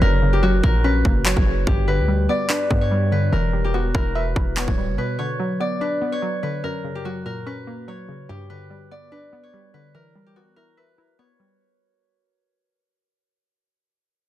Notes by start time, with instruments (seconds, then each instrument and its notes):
Already playing: harp C#5
0.01 808-style bass F#1, synth pluck F#2, harp A#4
0.22 synth pluck C#3
0.33 harp G4
0.43 synth pluck F#3, harp F#4
0.63 808-style bass A#1, synth pluck A#2, harp A#4, kick
0.84 synth pluck C#4, harp B4
1.05 808-style bass F#1, synth pluck A#3, kick
1.26 synth pluck F#3, harp C#5, clap
1.37 808-style bass F#1, kick
1.46 synth pluck C#3
1.67 808-style bass G1, synth pluck G2, harp G4, kick
1.88 synth pluck D3, harp B4
1.99 808-style bass D2
2.08 synth pluck G3
2.29 synth pluck B3, harp D5
2.50 synth pluck D4, harp B4, clap
2.71 808-style bass G2, synth pluck B3, kick
2.81 harp C#5
2.91 synth pluck G3
3.12 synth pluck D3, harp B4
3.32 808-style bass E1, synth pluck E3, harp A#4
3.53 synth pluck G3
3.64 harp G4
3.74 synth pluck B3, harp F#4
3.94 808-style bass E1, synth pluck E4, harp A#4, kick
4.15 harp B4, synth pluck E5
4.36 808-style bass E1, synth pluck E4, kick
4.57 synth pluck B3, harp C#5, clap
4.68 808-style bass D1, kick
4.77 synth pluck G3
4.88 808-style bass G1
4.98 synth pluck B2, harp B4
5.19 synth pluck D3, harp C#5
5.40 synth pluck F#3
5.60 synth pluck B3, harp D5
5.81 synth pluck D4, harp B4
6.02 synth pluck B3
6.12 harp C#5
6.22 synth pluck F#3
6.43 synth pluck D3, harp B4
6.63 synth pluck F#2, harp A#4
6.84 synth pluck C#3
6.95 harp G4
7.05 synth pluck F#3, harp F#4
7.26 synth pluck A#2, harp A#4
7.46 synth pluck C#4, harp B4
7.67 synth pluck A#3
7.88 synth pluck F#3, harp C#5
8.08 synth pluck C#3
8.29 synth pluck G2, harp G4
8.50 synth pluck D3, harp B4
8.70 synth pluck G3
8.91 synth pluck B3, harp D5
9.12 synth pluck D4, harp B4
9.33 synth pluck B3
9.43 harp C#5
9.53 synth pluck G3
9.74 synth pluck D3, harp B4
9.95 synth pluck E3, harp A#4
10.15 synth pluck G3
10.26 harp G4
10.36 synth pluck B3, harp F#4
10.56 synth pluck E4, harp A#4
10.77 harp B4, synth pluck E5
10.98 synth pluck E4
11.19 synth pluck B3, harp C#5
11.40 synth pluck G3